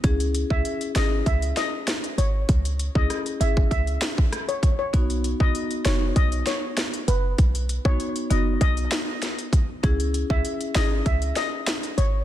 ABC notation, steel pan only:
X:1
M:4/4
L:1/16
Q:1/4=98
K:C#m
V:1 name="Steel pan"
z3 e z2 d z e z d z3 c z | z3 d z2 e z e3 z2 c z c | z3 d z2 c z d z c z3 B z | z3 c z2 d z d3 z4 z |
z3 e z2 d z e z d z3 c z |]